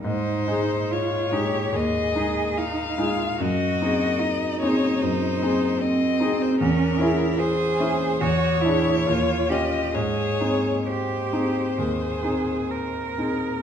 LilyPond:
<<
  \new Staff \with { instrumentName = "Violin" } { \time 4/4 \key aes \major \tempo 4 = 72 c''4 des''4 ees''4 f''4 | ees''4. des''8 c''4 ees''8. c''16 | bes'4 c''4 des''4. ees''8 | des''4 c''2~ c''8 r8 | }
  \new Staff \with { instrumentName = "Cello" } { \time 4/4 \key aes \major ees'4 f'8 g'8 aes'4 ees'8 f'8 | ges'4 ees'2 c'4 | des'8 fes'8 aes'4 ges'8 e'8 f'8 g'8 | aes'4 g'4 aes'4 bes'4 | }
  \new Staff \with { instrumentName = "Grand piano" } { \time 4/4 \key aes \major aes,8 <aes ees' aes'>4 <aes ees' aes'>8 ees,8 <aes ees' aes'>4 <aes ees' aes'>8 | ges,8 <c' ees' aes'>4 <c' ees' aes'>8 ges,8 <c' ees' aes'>4 <c' ees' aes'>8 | fes,8 <des' fes' aes'>4 <des' fes' aes'>8 e,8 <d' e' gis'>8 ees,8 <des' f' g'>8 | aes,8 <c' ees' aes'>4 <c' ees' aes'>8 ees,8 <c' ees' aes'>4 <c' ees' aes'>8 | }
>>